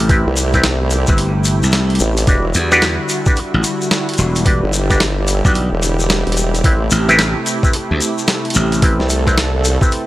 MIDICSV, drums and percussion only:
0, 0, Header, 1, 3, 480
1, 0, Start_track
1, 0, Tempo, 545455
1, 85, Time_signature, 4, 2, 24, 8
1, 8858, End_track
2, 0, Start_track
2, 0, Title_t, "Shekere"
2, 80, Note_on_c, 9, 82, 42
2, 168, Note_off_c, 9, 82, 0
2, 323, Note_on_c, 9, 82, 102
2, 411, Note_off_c, 9, 82, 0
2, 470, Note_on_c, 9, 82, 51
2, 558, Note_off_c, 9, 82, 0
2, 564, Note_on_c, 9, 82, 40
2, 652, Note_off_c, 9, 82, 0
2, 796, Note_on_c, 9, 82, 85
2, 884, Note_off_c, 9, 82, 0
2, 941, Note_on_c, 9, 82, 60
2, 1029, Note_off_c, 9, 82, 0
2, 1036, Note_on_c, 9, 82, 40
2, 1124, Note_off_c, 9, 82, 0
2, 1271, Note_on_c, 9, 82, 97
2, 1359, Note_off_c, 9, 82, 0
2, 1434, Note_on_c, 9, 82, 54
2, 1511, Note_off_c, 9, 82, 0
2, 1511, Note_on_c, 9, 82, 38
2, 1599, Note_off_c, 9, 82, 0
2, 1754, Note_on_c, 9, 82, 94
2, 1842, Note_off_c, 9, 82, 0
2, 1911, Note_on_c, 9, 82, 53
2, 1999, Note_off_c, 9, 82, 0
2, 2001, Note_on_c, 9, 82, 41
2, 2089, Note_off_c, 9, 82, 0
2, 2236, Note_on_c, 9, 82, 85
2, 2324, Note_off_c, 9, 82, 0
2, 2393, Note_on_c, 9, 82, 54
2, 2479, Note_off_c, 9, 82, 0
2, 2479, Note_on_c, 9, 82, 40
2, 2567, Note_off_c, 9, 82, 0
2, 2717, Note_on_c, 9, 82, 87
2, 2805, Note_off_c, 9, 82, 0
2, 2869, Note_on_c, 9, 82, 50
2, 2955, Note_off_c, 9, 82, 0
2, 2955, Note_on_c, 9, 82, 35
2, 3043, Note_off_c, 9, 82, 0
2, 3203, Note_on_c, 9, 82, 102
2, 3291, Note_off_c, 9, 82, 0
2, 3358, Note_on_c, 9, 82, 51
2, 3444, Note_off_c, 9, 82, 0
2, 3444, Note_on_c, 9, 82, 36
2, 3532, Note_off_c, 9, 82, 0
2, 3677, Note_on_c, 9, 82, 91
2, 3765, Note_off_c, 9, 82, 0
2, 3834, Note_on_c, 9, 82, 50
2, 3915, Note_off_c, 9, 82, 0
2, 3915, Note_on_c, 9, 82, 39
2, 4003, Note_off_c, 9, 82, 0
2, 4163, Note_on_c, 9, 82, 88
2, 4251, Note_off_c, 9, 82, 0
2, 4317, Note_on_c, 9, 82, 54
2, 4405, Note_off_c, 9, 82, 0
2, 4407, Note_on_c, 9, 82, 41
2, 4495, Note_off_c, 9, 82, 0
2, 4642, Note_on_c, 9, 82, 92
2, 4730, Note_off_c, 9, 82, 0
2, 4800, Note_on_c, 9, 82, 55
2, 4879, Note_off_c, 9, 82, 0
2, 4879, Note_on_c, 9, 82, 35
2, 4967, Note_off_c, 9, 82, 0
2, 5125, Note_on_c, 9, 82, 90
2, 5213, Note_off_c, 9, 82, 0
2, 5276, Note_on_c, 9, 82, 53
2, 5360, Note_off_c, 9, 82, 0
2, 5360, Note_on_c, 9, 82, 39
2, 5448, Note_off_c, 9, 82, 0
2, 5604, Note_on_c, 9, 82, 94
2, 5692, Note_off_c, 9, 82, 0
2, 5764, Note_on_c, 9, 82, 51
2, 5842, Note_off_c, 9, 82, 0
2, 5842, Note_on_c, 9, 82, 34
2, 5930, Note_off_c, 9, 82, 0
2, 6077, Note_on_c, 9, 82, 82
2, 6165, Note_off_c, 9, 82, 0
2, 6240, Note_on_c, 9, 82, 53
2, 6328, Note_off_c, 9, 82, 0
2, 6337, Note_on_c, 9, 82, 37
2, 6425, Note_off_c, 9, 82, 0
2, 6569, Note_on_c, 9, 82, 91
2, 6657, Note_off_c, 9, 82, 0
2, 6721, Note_on_c, 9, 82, 49
2, 6805, Note_off_c, 9, 82, 0
2, 6805, Note_on_c, 9, 82, 34
2, 6893, Note_off_c, 9, 82, 0
2, 7051, Note_on_c, 9, 82, 95
2, 7139, Note_off_c, 9, 82, 0
2, 7200, Note_on_c, 9, 82, 49
2, 7283, Note_off_c, 9, 82, 0
2, 7283, Note_on_c, 9, 82, 40
2, 7371, Note_off_c, 9, 82, 0
2, 7516, Note_on_c, 9, 82, 84
2, 7604, Note_off_c, 9, 82, 0
2, 7682, Note_on_c, 9, 82, 54
2, 7767, Note_off_c, 9, 82, 0
2, 7767, Note_on_c, 9, 82, 38
2, 7855, Note_off_c, 9, 82, 0
2, 8004, Note_on_c, 9, 82, 87
2, 8092, Note_off_c, 9, 82, 0
2, 8161, Note_on_c, 9, 82, 46
2, 8249, Note_off_c, 9, 82, 0
2, 8252, Note_on_c, 9, 82, 38
2, 8340, Note_off_c, 9, 82, 0
2, 8487, Note_on_c, 9, 82, 81
2, 8575, Note_off_c, 9, 82, 0
2, 8643, Note_on_c, 9, 82, 59
2, 8724, Note_off_c, 9, 82, 0
2, 8724, Note_on_c, 9, 82, 40
2, 8812, Note_off_c, 9, 82, 0
2, 8858, End_track
3, 0, Start_track
3, 0, Title_t, "Drums"
3, 83, Note_on_c, 9, 36, 124
3, 83, Note_on_c, 9, 42, 83
3, 171, Note_off_c, 9, 36, 0
3, 171, Note_off_c, 9, 42, 0
3, 323, Note_on_c, 9, 42, 65
3, 411, Note_off_c, 9, 42, 0
3, 474, Note_on_c, 9, 36, 64
3, 475, Note_on_c, 9, 40, 53
3, 559, Note_on_c, 9, 38, 121
3, 559, Note_on_c, 9, 42, 78
3, 562, Note_off_c, 9, 36, 0
3, 563, Note_off_c, 9, 40, 0
3, 647, Note_off_c, 9, 38, 0
3, 647, Note_off_c, 9, 42, 0
3, 799, Note_on_c, 9, 42, 65
3, 887, Note_off_c, 9, 42, 0
3, 953, Note_on_c, 9, 36, 112
3, 1038, Note_on_c, 9, 42, 81
3, 1041, Note_off_c, 9, 36, 0
3, 1126, Note_off_c, 9, 42, 0
3, 1280, Note_on_c, 9, 42, 67
3, 1368, Note_off_c, 9, 42, 0
3, 1521, Note_on_c, 9, 38, 127
3, 1521, Note_on_c, 9, 42, 83
3, 1609, Note_off_c, 9, 38, 0
3, 1609, Note_off_c, 9, 42, 0
3, 1673, Note_on_c, 9, 42, 49
3, 1717, Note_off_c, 9, 42, 0
3, 1717, Note_on_c, 9, 42, 64
3, 1805, Note_off_c, 9, 42, 0
3, 1914, Note_on_c, 9, 42, 65
3, 2000, Note_off_c, 9, 42, 0
3, 2000, Note_on_c, 9, 42, 80
3, 2001, Note_on_c, 9, 36, 127
3, 2088, Note_off_c, 9, 42, 0
3, 2089, Note_off_c, 9, 36, 0
3, 2240, Note_on_c, 9, 42, 61
3, 2328, Note_off_c, 9, 42, 0
3, 2392, Note_on_c, 9, 40, 53
3, 2480, Note_off_c, 9, 40, 0
3, 2482, Note_on_c, 9, 38, 120
3, 2482, Note_on_c, 9, 42, 78
3, 2570, Note_off_c, 9, 38, 0
3, 2570, Note_off_c, 9, 42, 0
3, 2726, Note_on_c, 9, 42, 62
3, 2814, Note_off_c, 9, 42, 0
3, 2872, Note_on_c, 9, 36, 111
3, 2960, Note_off_c, 9, 36, 0
3, 2965, Note_on_c, 9, 42, 80
3, 3053, Note_off_c, 9, 42, 0
3, 3202, Note_on_c, 9, 42, 66
3, 3290, Note_off_c, 9, 42, 0
3, 3442, Note_on_c, 9, 38, 127
3, 3442, Note_on_c, 9, 42, 79
3, 3530, Note_off_c, 9, 38, 0
3, 3530, Note_off_c, 9, 42, 0
3, 3598, Note_on_c, 9, 42, 49
3, 3639, Note_off_c, 9, 42, 0
3, 3639, Note_on_c, 9, 42, 63
3, 3687, Note_on_c, 9, 40, 36
3, 3727, Note_off_c, 9, 42, 0
3, 3775, Note_off_c, 9, 40, 0
3, 3837, Note_on_c, 9, 42, 62
3, 3922, Note_on_c, 9, 36, 117
3, 3924, Note_off_c, 9, 42, 0
3, 3924, Note_on_c, 9, 42, 82
3, 4010, Note_off_c, 9, 36, 0
3, 4012, Note_off_c, 9, 42, 0
3, 4164, Note_on_c, 9, 42, 64
3, 4252, Note_off_c, 9, 42, 0
3, 4314, Note_on_c, 9, 36, 59
3, 4316, Note_on_c, 9, 40, 54
3, 4402, Note_off_c, 9, 36, 0
3, 4403, Note_on_c, 9, 38, 114
3, 4403, Note_on_c, 9, 42, 77
3, 4404, Note_off_c, 9, 40, 0
3, 4491, Note_off_c, 9, 38, 0
3, 4491, Note_off_c, 9, 42, 0
3, 4645, Note_on_c, 9, 42, 64
3, 4733, Note_off_c, 9, 42, 0
3, 4795, Note_on_c, 9, 36, 107
3, 4883, Note_off_c, 9, 36, 0
3, 4887, Note_on_c, 9, 42, 79
3, 4975, Note_off_c, 9, 42, 0
3, 5127, Note_on_c, 9, 42, 65
3, 5215, Note_off_c, 9, 42, 0
3, 5368, Note_on_c, 9, 38, 124
3, 5368, Note_on_c, 9, 42, 80
3, 5456, Note_off_c, 9, 38, 0
3, 5456, Note_off_c, 9, 42, 0
3, 5517, Note_on_c, 9, 42, 49
3, 5562, Note_off_c, 9, 42, 0
3, 5562, Note_on_c, 9, 42, 63
3, 5650, Note_off_c, 9, 42, 0
3, 5760, Note_on_c, 9, 42, 63
3, 5844, Note_on_c, 9, 36, 119
3, 5846, Note_off_c, 9, 42, 0
3, 5846, Note_on_c, 9, 42, 80
3, 5932, Note_off_c, 9, 36, 0
3, 5934, Note_off_c, 9, 42, 0
3, 6087, Note_on_c, 9, 42, 62
3, 6175, Note_off_c, 9, 42, 0
3, 6240, Note_on_c, 9, 40, 56
3, 6325, Note_on_c, 9, 38, 114
3, 6325, Note_on_c, 9, 42, 78
3, 6328, Note_off_c, 9, 40, 0
3, 6413, Note_off_c, 9, 38, 0
3, 6413, Note_off_c, 9, 42, 0
3, 6565, Note_on_c, 9, 42, 63
3, 6653, Note_off_c, 9, 42, 0
3, 6717, Note_on_c, 9, 36, 105
3, 6805, Note_off_c, 9, 36, 0
3, 6806, Note_on_c, 9, 42, 81
3, 6894, Note_off_c, 9, 42, 0
3, 7044, Note_on_c, 9, 42, 69
3, 7132, Note_off_c, 9, 42, 0
3, 7285, Note_on_c, 9, 38, 118
3, 7285, Note_on_c, 9, 42, 83
3, 7373, Note_off_c, 9, 38, 0
3, 7373, Note_off_c, 9, 42, 0
3, 7436, Note_on_c, 9, 42, 48
3, 7482, Note_off_c, 9, 42, 0
3, 7482, Note_on_c, 9, 42, 64
3, 7525, Note_on_c, 9, 40, 38
3, 7570, Note_off_c, 9, 42, 0
3, 7613, Note_off_c, 9, 40, 0
3, 7675, Note_on_c, 9, 42, 68
3, 7763, Note_off_c, 9, 42, 0
3, 7764, Note_on_c, 9, 42, 85
3, 7765, Note_on_c, 9, 36, 119
3, 7852, Note_off_c, 9, 42, 0
3, 7853, Note_off_c, 9, 36, 0
3, 7919, Note_on_c, 9, 38, 35
3, 8007, Note_off_c, 9, 38, 0
3, 8009, Note_on_c, 9, 42, 68
3, 8097, Note_off_c, 9, 42, 0
3, 8157, Note_on_c, 9, 36, 59
3, 8162, Note_on_c, 9, 40, 59
3, 8245, Note_off_c, 9, 36, 0
3, 8250, Note_off_c, 9, 40, 0
3, 8251, Note_on_c, 9, 38, 118
3, 8251, Note_on_c, 9, 42, 84
3, 8339, Note_off_c, 9, 38, 0
3, 8339, Note_off_c, 9, 42, 0
3, 8490, Note_on_c, 9, 42, 67
3, 8578, Note_off_c, 9, 42, 0
3, 8637, Note_on_c, 9, 36, 107
3, 8725, Note_off_c, 9, 36, 0
3, 8731, Note_on_c, 9, 42, 84
3, 8819, Note_off_c, 9, 42, 0
3, 8858, End_track
0, 0, End_of_file